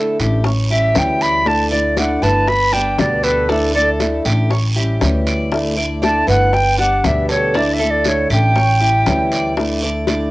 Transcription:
Already playing: D3 A3 D4 E4 A4
0.20 A1 A3 D4 E4 G4, short guiro
0.44 C#5, muted steel-string acoustic guitar stroke, high bongo, long guiro
0.69 G3 C#4 E4 G4 E5
0.94 D2 E3 G3 C#4 E4, high bongo, low bongo, short guiro
0.98 G5
1.21 D5 B5, short guiro
1.45 D3 A3 D4 E4 A5, high bongo, long guiro
1.71 A3 D4 E4 D5
1.97 D3 A3 D4 E4 D5 F#5, high bongo, short guiro
2.22 G1 A3 D4 E4 B4 A5, high bongo, short guiro
2.48 B5, muted steel-string acoustic guitar stroke, high bongo, long guiro
2.73 G3 B3 D4 G4 G5, high bongo
2.98 D2 B2 D3 G3 B3 G4 D5, high bongo, low bongo, short guiro
3.23 A4 B4, high bongo, short guiro
3.49 D3 A3 D4 E4 A4, high bongo, long guiro
3.75 A3 D4 E4 A4 D5
4.00 D3 A3 D4 E4, high bongo, short guiro
4.25 A1 A3 D4 E4 G4, short guiro
4.50 C#5, muted steel-string acoustic guitar stroke, high bongo, long guiro
4.76 G3 C#4 E4 G4
5.00 D2 E3 G3 C#4 E4, high bongo, low bongo, short guiro
5.27 D5, short guiro
5.52 D3 A3 D4 E4, high bongo, long guiro
5.77 A3 D4 E4 D5
6.02 D3 A3 D4 E4 D5 A5, high bongo, short guiro
6.26 G1 A3 D4 E4 B4 F#5, high bongo, short guiro
6.53 G5, muted steel-string acoustic guitar stroke, high bongo, long guiro
6.78 G3 B3 D4 G4 F#5, high bongo
7.04 D2 B2 D3 G3 B3 G4 E5, high bongo, low bongo, short guiro
7.29 A4 C#5, high bongo, short guiro
7.54 D3 A3 D4 E4 D5, high bongo, long guiro
7.74 E5
7.79 A3 D4 E4 A4
7.91 D5
8.04 D3 A3 D4 E4 C#5, high bongo, short guiro
8.30 A1 A3 D4 E4 G4 G5, short guiro
8.56 C#5, muted steel-string acoustic guitar stroke, high bongo, long guiro
8.81 G3 C#4 E4 G4
9.06 D2 E3 G3 C#4 E4, high bongo, low bongo, short guiro
9.32 D5, short guiro
9.57 D3 A3 D4 E4, high bongo, long guiro
9.82 A3 D4 E4 D5
10.07 D3 A3 D4 E4 D5, high bongo, short guiro

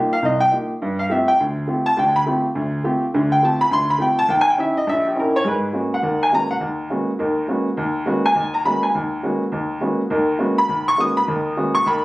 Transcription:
Already playing: A#3 D#4 F4 G4
0.13 F5
0.22 C2 D#5
0.40 G5
0.52 A#3 D#4 F4 G4
0.82 G2
0.99 F5
1.10 A3 C4 F4 G4 E5
1.28 G5
1.40 D2
1.67 A3 C4 F4 G4
1.86 A5
1.97 D2 D3 G5
2.16 B5
2.26 A3 C4 F4 G4
2.55 D2
2.84 A3 C4 F4 G4
3.14 D2 D3
3.32 G5
3.43 A3 C4 F4 G4 A5
3.61 B5
3.71 D2 C6
3.90 B5
3.98 A3 C4 F4 G4 G5
4.19 A5
4.28 D#2 G5
4.41 G#5
4.50 G5
4.58 C#4 D#4 E4 G4 E5
4.77 D#5
4.87 A#1 E5
5.07 G4
5.15 C#4 D#4 E4 G4
5.20 A#4
5.36 C#5
5.43 G#2 G#3 A#4
5.48 B4
5.73 G#3 A#3 B3 C#4 F#4
5.94 F#5
6.02 D#2 D#3
6.23 G#5
6.32 G#3 A#3 B3 C#4 F#4 A#5
6.51 F#5
6.60 D#2
6.90 G#3 A#3 B3 C#4 F#4
7.19 D#2 D#3
7.48 G#3 A#3 B3 C#4 F#4
7.77 D#2
8.06 G#3 A#3 B3 C#4 F#4
8.26 G#5
8.35 D#2
8.54 A#5
8.65 G#3 A#3 B3 C#4 F#4 B5
8.83 G#5
8.95 D#2
9.23 G#3 A#3 B3 C#4 F#4
9.52 D#2
9.81 G#3 A#3 B3 C#4 F#4
10.10 D#2 D#3
10.38 G#3 A#3 B3 C#4 F#4
10.58 B5
10.69 D#2
10.88 C#6
10.98 G#3 A#3 B3 C#4 F#4 D#6
11.17 B5
11.27 D#2 D#3
11.57 G#3 A#3 B3 C#4 F#4
11.75 C#6
11.86 D#2 D#3 B5

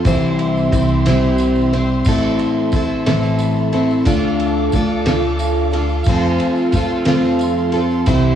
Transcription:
Already playing: C6
0.05 C2 C3 E3 G3 C4 E4 G4 C5 E5, kick, ride, tambourine
0.39 ride
0.57 tambourine
0.72 C2 G3 C4 E4 C5, kick, ride, tambourine
0.89 tambourine
1.05 C3 E3 G3 C4 E4 C5, snare, ride, tambourine
1.38 ride, tambourine
1.56 tambourine
1.73 G3 C4 E4 C5, ride
2.05 A1 A2 E3 A3 C4 E4 A4 E5, kick, tambourine, crash
2.39 ride, tambourine
2.72 A1 A3 C4 E4, kick, ride, tambourine
2.76 A4
3.06 A2 E3 A3 C4 E4 A4, snare, ride
3.23 tambourine
3.39 ride, tambourine
3.56 tambourine
3.72 A3 C4 E4 A4, ride, tambourine
3.91 tambourine
4.05 D2 D3 A3 D4 F4 A4 F5 D6, kick, ride, tambourine
4.39 ride, tambourine
4.72 D2 A3 D4 A4, kick, ride, tambourine
4.76 F4
5.06 D3 A3 D4 F4 A4, snare, ride
5.23 tambourine
5.39 ride, tambourine
5.56 tambourine
5.72 D4 F4 A4, ride, tambourine
5.89 tambourine
6.04 F2 C6, kick, crash, tambourine
6.09 F3 A3 C4 F4 A4
6.38 ride, tambourine
6.56 tambourine
6.72 F2 A3 C4 F4, kick, ride, tambourine
6.77 A4
7.05 A3 C4 F4 A4, snare, ride
7.09 F3
7.24 tambourine
7.39 ride, tambourine
7.58 tambourine
7.72 F4 A4, ride, tambourine
7.76 C4
7.91 tambourine
8.06 C2 C3 E3 G3 C4 E4 G4 C5 E5, kick, ride, tambourine

